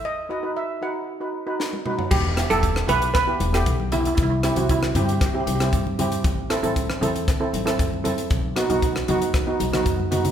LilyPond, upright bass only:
\new Staff \with { instrumentName = "Upright bass" } { \clef bass \time 4/4 \key b \phrygian \tempo 4 = 116 r1 | \key e \minor e,,8. e,,8. b,,8 r8 e,,8 b,,4 | c,8. c,8. g,8 r8 c,8 g,4 | a,,8. a,,8. e,8 r8 a,,8 fis,4 |
b,,8. b,,8. fis,8 r8 b,,8 fis,4 | }